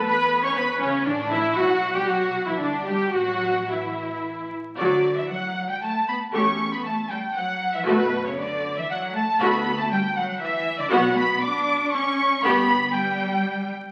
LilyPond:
<<
  \new Staff \with { instrumentName = "Violin section" } { \time 3/4 \key d \major \tempo 4 = 118 b''8. cis'''16 b''8 cis''8 d''8 e''8 | fis''8. g''16 fis''8. e''16 d''8 g''8 | fis''4 e''4. r8 | d''8. e''16 fis''8. g''16 a''8 b''8 |
cis'''8. b''16 a''8 g''8 fis''8. e''16 | b'8. cis''16 d''8. e''16 fis''8 a''8 | b''8. a''16 g''8 fis''8 e''8. d''16 | fis''8 b''8 d'''4 cis'''4 |
b''4 g''4. r8 | }
  \new Staff \with { instrumentName = "Violin section" } { \time 3/4 \key d \major b'8. cis''16 b'8 cis'8 d'8 e'8 | fis'8. g'16 fis'8. e'16 d'8 g'8 | fis'4 e'4. r8 | d''8. e''16 fis''8. g''16 a''8 b''8 |
cis'''8. b''16 a''8 g''8 fis''8. e''16 | b'8. cis''16 d''8. e''16 fis''8 a''8 | b''8. a''16 g''8 fis''8 e''8. d''16 | fis''8 b''8 d'''4 cis'''4 |
b''4 g''4. r8 | }
  \new Staff \with { instrumentName = "Viola section" } { \time 3/4 \key d \major b'8. cis''16 b'8 cis'8 d'8 e'8 | fis'8. g'16 fis'8. e'16 d'8 g'8 | fis'4 e'4. r8 | <fis fis'>8 r2 r8 |
<a g'>8 r2 r8 | <a fis'>8 r2 r8 | <a fis'>8 r2 r8 | <b fis'>8 r2 r8 |
<b g'>8 r2 r8 | }
  \new Staff \with { instrumentName = "Cello section" } { \clef bass \time 3/4 \key d \major b8. cis'16 b8 cis8 d8 e8 | fis8. g16 fis8. e16 d8 g8 | fis4 e4. r8 | d8. e16 fis8. g16 a8 b8 |
cis'8. b16 a8 g8 fis8. e16 | b,8. cis16 d8. e16 fis8 a8 | b8. a16 g8 fis8 e8. d16 | fis8 b8 d'4 cis'4 |
b4 g4. r8 | }
  \new Staff \with { instrumentName = "Double bass section" } { \clef bass \time 3/4 \key d \major e,2 a,,4 | b,,2 g,,4 | a,,2~ a,,8 r8 | d,4 r2 |
e,4 r2 | fis,4 r2 | d,4 r2 | b,,4 r2 |
g,,4 r2 | }
>>